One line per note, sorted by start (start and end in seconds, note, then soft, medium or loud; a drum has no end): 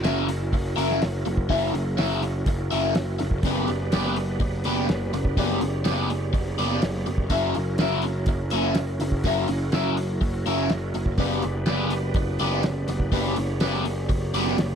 0.00 7.29 F#2 medium
0.00 7.29 C#3 medium
0.00 3.40 C#4 medium
0.00 3.40 E4 medium
0.00 3.40 F#4 medium
0.00 3.40 A#4 medium
0.04 0.50 F#1 medium
0.04 0.28 C#4 medium
0.04 0.28 E4 medium
0.04 0.28 A#4 medium
0.04 0.27 E5 loud
0.04 snare medium
0.04 open hi-hat medium
0.29 muted overdriven electric guitar stroke soft
0.29 open hi-hat medium
0.53 0.76 F#1 medium
0.53 muted overdriven electric guitar stroke soft
0.53 kick medium
0.53 open hi-hat medium
0.76 1.00 F#1 medium
0.76 1.01 C#4 medium
0.76 1.01 E4 medium
0.76 1.01 A#4 medium
0.76 1.01 E5 medium
0.76 open hi-hat medium
0.91 snare soft
1.02 1.25 F#1 medium
1.02 muted overdriven electric guitar stroke soft
1.02 snare loud
1.02 open hi-hat medium
1.25 1.49 F#1 medium
1.25 muted overdriven electric guitar stroke soft
1.25 open hi-hat medium
1.37 kick medium
1.49 1.72 F#1 medium
1.49 1.74 C#4 medium
1.49 1.73 E4 loud
1.49 1.73 A#4 medium
1.49 1.73 E5 medium
1.49 kick medium
1.49 open hi-hat medium
1.74 1.97 F#1 medium
1.74 muted overdriven electric guitar stroke soft
1.74 open hi-hat soft
1.97 2.43 F#1 medium
1.97 2.22 C#4 medium
1.97 2.22 E4 medium
1.97 2.23 A#4 medium
1.97 2.22 E5 loud
1.97 snare medium
1.97 open hi-hat medium
2.22 muted overdriven electric guitar stroke soft
2.22 open hi-hat soft
2.46 2.69 F#1 medium
2.46 muted overdriven electric guitar stroke soft
2.46 kick medium
2.46 open hi-hat medium
2.71 2.95 F#1 medium
2.71 2.94 C#4 medium
2.71 2.94 E4 medium
2.71 2.94 A#4 medium
2.71 2.94 E5 medium
2.71 open hi-hat medium
2.95 3.18 F#1 medium
2.95 muted overdriven electric guitar stroke soft
2.95 snare loud
2.95 open hi-hat medium
3.19 3.43 F#1 medium
3.19 muted overdriven electric guitar stroke soft
3.19 snare soft
3.19 open hi-hat medium
3.31 kick medium
3.42 3.66 F#1 medium
3.42 7.27 B3 medium
3.42 3.68 B3 medium
3.42 7.26 G4 medium
3.42 3.68 G4 medium
3.42 5.35 B4 medium
3.42 7.27 D5 medium
3.42 kick medium
3.42 open hi-hat medium
3.46 3.68 B4 medium
3.46 3.68 D5 medium
3.68 3.91 F#1 medium
3.68 muted overdriven electric guitar stroke soft
3.68 open hi-hat soft
3.92 4.38 F#1 medium
3.92 4.16 B3 medium
3.92 4.16 G4 medium
3.92 4.16 B4 medium
3.92 4.16 D5 medium
3.92 snare medium
3.92 open hi-hat medium
4.16 muted overdriven electric guitar stroke soft
4.16 open hi-hat medium
4.40 4.63 F#1 medium
4.40 muted overdriven electric guitar stroke soft
4.40 kick loud
4.40 open hi-hat medium
4.64 4.88 F#1 medium
4.64 4.87 B3 medium
4.64 4.88 G4 medium
4.64 4.88 B4 medium
4.64 4.88 D5 medium
4.64 open hi-hat medium
4.88 5.12 F#1 medium
4.88 muted overdriven electric guitar stroke soft
4.88 snare loud
4.88 open hi-hat medium
5.13 5.36 F#1 medium
5.13 muted overdriven electric guitar stroke soft
5.13 snare soft
5.13 open hi-hat medium
5.25 kick medium
5.37 5.60 F#1 medium
5.37 5.61 B3 medium
5.37 5.61 G4 medium
5.37 5.60 B4 medium
5.37 7.29 C#5 medium
5.37 5.60 D5 medium
5.37 kick medium
5.37 open hi-hat medium
5.61 5.84 F#1 medium
5.61 muted overdriven electric guitar stroke soft
5.61 open hi-hat soft
5.85 6.32 F#1 medium
5.85 6.09 B3 medium
5.85 6.10 G4 medium
5.85 6.10 B4 medium
5.85 6.09 D5 medium
5.85 snare loud
5.85 open hi-hat medium
6.10 muted overdriven electric guitar stroke soft
6.10 open hi-hat medium
6.33 6.57 F#1 medium
6.33 muted overdriven electric guitar stroke soft
6.33 kick loud
6.33 open hi-hat medium
6.58 6.82 F#1 medium
6.58 6.81 B3 medium
6.58 6.81 G4 medium
6.58 6.81 B4 medium
6.58 6.82 D5 medium
6.58 open hi-hat medium
6.82 7.05 F#1 medium
6.82 muted overdriven electric guitar stroke soft
6.82 snare medium
6.82 open hi-hat medium
7.06 7.30 F#1 medium
7.06 muted overdriven electric guitar stroke soft
7.06 open hi-hat medium
7.18 kick medium
7.28 7.53 F#1 medium
7.28 14.75 F#2 medium
7.28 14.75 C#3 medium
7.28 11.13 C#4 medium
7.28 7.55 C#4 medium
7.28 11.14 E4 medium
7.28 7.55 E4 medium
7.28 11.14 F#4 medium
7.28 11.14 A#4 medium
7.28 7.55 A#4 medium
7.28 7.55 E5 medium
7.28 kick medium
7.28 open hi-hat medium
7.55 7.79 F#1 medium
7.55 muted overdriven electric guitar stroke soft
7.55 open hi-hat soft
7.78 8.25 F#1 medium
7.78 8.04 C#4 medium
7.78 8.04 E4 medium
7.78 8.04 A#4 medium
7.78 8.03 E5 medium
7.78 snare loud
7.78 open hi-hat medium
8.02 muted overdriven electric guitar stroke soft
8.02 open hi-hat soft
8.26 8.50 F#1 medium
8.26 muted overdriven electric guitar stroke soft
8.26 kick loud
8.26 open hi-hat medium
8.50 8.75 F#1 medium
8.50 8.76 C#4 medium
8.50 8.76 E4 medium
8.50 8.76 A#4 medium
8.50 8.76 E5 medium
8.50 open hi-hat medium
8.75 8.99 F#1 medium
8.75 muted overdriven electric guitar stroke soft
8.75 snare loud
8.75 open hi-hat medium
9.00 9.23 F#1 medium
9.00 muted overdriven electric guitar stroke soft
9.00 snare soft
9.00 open hi-hat medium
9.12 kick medium
9.24 9.48 F#1 loud
9.24 9.48 C#4 medium
9.24 9.48 E4 medium
9.24 9.48 A#4 medium
9.24 9.48 E5 medium
9.24 kick medium
9.24 open hi-hat medium
9.48 9.72 F#1 medium
9.48 muted overdriven electric guitar stroke medium
9.48 open hi-hat medium
9.72 10.19 F#1 medium
9.72 9.97 C#4 loud
9.72 9.96 E4 medium
9.72 9.96 A#4 loud
9.72 9.95 E5 loud
9.72 snare loud
9.72 open hi-hat medium
9.97 muted overdriven electric guitar stroke soft
9.97 open hi-hat medium
10.21 10.45 F#1 medium
10.21 muted overdriven electric guitar stroke soft
10.21 kick loud
10.21 open hi-hat medium
10.46 10.69 F#1 medium
10.46 10.70 C#4 medium
10.46 10.70 E4 medium
10.46 10.70 A#4 medium
10.46 10.70 E5 loud
10.46 open hi-hat medium
10.70 10.94 F#1 medium
10.70 muted overdriven electric guitar stroke soft
10.70 snare loud
10.70 open hi-hat medium
10.94 11.18 F#1 medium
10.94 muted overdriven electric guitar stroke soft
10.94 open hi-hat medium
11.06 kick medium
11.18 11.42 F#1 medium
11.18 11.43 B3 medium
11.18 14.75 B3 medium
11.18 11.43 G4 medium
11.18 14.75 G4 medium
11.18 13.11 B4 medium
11.18 11.43 B4 medium
11.18 14.75 D5 medium
11.18 11.42 D5 loud
11.18 kick medium
11.18 open hi-hat medium
11.42 11.67 F#1 medium
11.42 muted overdriven electric guitar stroke medium
11.42 open hi-hat soft
11.66 12.14 F#1 medium
11.66 11.91 B3 medium
11.66 11.91 G4 medium
11.66 11.91 B4 medium
11.66 11.92 D5 loud
11.66 snare medium
11.66 open hi-hat medium
11.90 muted overdriven electric guitar stroke soft
11.90 open hi-hat medium
12.14 12.38 F#1 medium
12.14 muted overdriven electric guitar stroke soft
12.14 kick medium
12.14 open hi-hat medium
12.39 12.63 F#1 medium
12.39 12.62 B3 medium
12.39 12.62 G4 medium
12.39 12.63 B4 medium
12.39 12.63 D5 medium
12.39 open hi-hat medium
12.63 muted overdriven electric guitar stroke soft
12.63 snare loud
12.63 open hi-hat medium
12.88 13.11 F#1 medium
12.88 muted overdriven electric guitar stroke soft
12.88 snare soft
12.88 open hi-hat medium
13.00 kick medium
13.12 13.35 F#1 medium
13.12 13.36 B3 medium
13.12 13.36 G4 medium
13.12 13.36 B4 loud
13.12 14.75 C#5 medium
13.12 13.36 D5 medium
13.12 kick medium
13.12 open hi-hat medium
13.36 13.60 F#1 medium
13.36 muted overdriven electric guitar stroke soft
13.36 open hi-hat medium
13.60 14.07 F#1 medium
13.60 13.85 B3 medium
13.60 13.84 G4 medium
13.60 13.85 B4 medium
13.60 13.84 D5 loud
13.60 snare medium
13.60 open hi-hat medium
13.85 muted overdriven electric guitar stroke soft
13.85 open hi-hat medium
14.09 14.33 F#1 medium
14.09 muted overdriven electric guitar stroke soft
14.09 kick loud
14.09 open hi-hat medium
14.34 14.57 F#1 medium
14.34 14.58 B3 medium
14.34 14.58 G4 medium
14.34 14.58 B4 medium
14.34 14.58 D5 medium
14.34 open hi-hat medium
14.47 snare soft
14.58 14.75 F#1 medium
14.58 muted overdriven electric guitar stroke soft
14.58 snare loud
14.58 open hi-hat medium